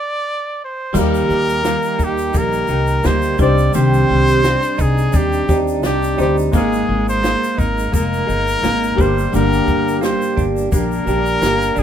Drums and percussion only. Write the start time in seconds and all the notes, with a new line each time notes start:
0.95 kick, crash, shaker
1.15 shaker
1.30 snare, shaker
1.49 shaker
1.64 snare, shaker
1.82 shaker
1.84 shaker
1.99 kick, shaker
2.18 shaker
2.34 kick, shaker
2.53 shaker
2.68 shaker
2.87 shaker
3.03 snare, shaker
3.22 shaker
3.38 kick, shaker
3.58 shaker
3.74 shaker
3.93 shaker
4.10 snare
4.28 shaker
4.44 snare, shaker
4.62 shaker
4.64 shaker
4.79 kick, shaker
4.98 shaker
5.13 kick, shaker
5.33 shaker
5.49 kick, shaker
5.68 shaker
5.83 snare, shaker
6.02 shaker
6.18 shaker
6.37 shaker
6.53 kick, shaker
6.73 shaker
7.09 shaker
7.24 snare, shaker
7.44 shaker
7.58 kick, shaker
7.77 shaker
7.94 kick, shaker
8.13 shaker
8.29 shaker
8.47 shaker
8.64 snare, shaker
8.83 shaker
8.98 kick, shaker
9.18 shaker
9.34 shaker
9.53 shaker
9.68 kick, shaker
9.88 shaker
10.02 snare, shaker
10.22 shaker
10.38 kick, shaker
10.56 shaker
10.72 kick, shaker
10.91 shaker
11.07 shaker
11.26 shaker
11.42 snare, shaker
11.61 shaker
11.76 shaker